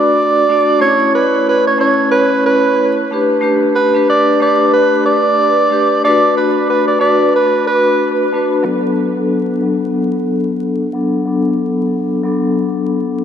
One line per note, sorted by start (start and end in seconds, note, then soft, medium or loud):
0.00 0.41 A3 medium
0.00 0.41 D4 medium
0.00 0.42 F#4 medium
0.00 0.42 D5 medium
0.00 0.78 D5 medium
0.49 0.79 A3 medium
0.49 0.80 D4 medium
0.49 0.81 F#4 medium
0.49 0.81 D5 medium
0.80 1.73 A3 loud
0.80 1.73 C#4 medium
0.80 1.73 E4 medium
0.80 1.11 C#5 loud
0.80 1.74 C#5 loud
1.15 1.44 B4 medium
1.49 1.66 B4 medium
1.67 1.79 C#5 medium
1.78 3.01 A3 medium
1.78 3.02 C#4 medium
1.78 3.02 E4 medium
1.78 2.10 C#5 medium
1.78 3.03 C#5 loud
2.11 2.41 B4 medium
2.46 2.94 B4 loud
3.11 3.40 A3 medium
3.11 3.41 D4 medium
3.11 3.42 G4 medium
3.11 3.43 B4 medium
3.41 3.89 A3 medium
3.41 3.90 D4 medium
3.41 3.90 G4 medium
3.41 3.91 B4 loud
3.76 4.05 B4 medium
3.94 4.37 A3 medium
3.94 4.38 D4 medium
3.94 4.38 G4 medium
3.94 4.39 B4 loud
4.09 4.38 D5 medium
4.40 5.62 A3 loud
4.40 5.63 D4 medium
4.40 5.63 G4 medium
4.40 5.64 B4 loud
4.40 4.71 D5 medium
4.73 5.03 B4 medium
5.06 6.00 D5 medium
5.70 6.01 A3 medium
5.70 6.02 D4 medium
5.70 6.02 G4 medium
5.70 6.03 B4 medium
6.04 6.96 A3 loud
6.04 6.96 D4 medium
6.04 6.97 F#4 medium
6.04 6.97 B4 loud
6.04 6.34 D5 loud
6.37 6.66 B4 medium
6.70 6.87 B4 medium
6.88 7.00 D5 medium
6.99 8.22 A3 medium
6.99 8.23 D4 medium
6.99 8.23 F#4 medium
6.99 8.24 B4 loud
6.99 7.31 D5 medium
7.36 7.65 B4 medium
7.67 8.16 B4 medium
8.33 8.63 A3 medium
8.33 8.64 D4 medium
8.33 8.64 F#4 medium
8.33 8.64 B4 medium
8.63 9.11 F#3 medium
8.63 9.12 B3 medium
8.63 9.12 D4 medium
8.63 9.13 A4 loud
9.16 9.60 F#3 medium
9.16 9.60 B3 medium
9.16 9.60 D4 medium
9.16 9.61 A4 loud
9.62 10.84 F#3 medium
9.62 10.85 B3 medium
9.62 10.85 D4 medium
9.62 10.86 A4 loud
10.93 11.24 F#3 medium
10.93 11.24 B3 medium
10.93 11.25 D4 medium
10.93 11.25 A4 medium
11.26 12.17 F#3 medium
11.26 12.18 B3 medium
11.26 12.18 D4 medium
11.26 12.19 A4 loud
12.24 13.24 F#3 loud
12.24 13.24 B3 medium
12.24 13.24 D4 medium
12.24 13.24 A4 loud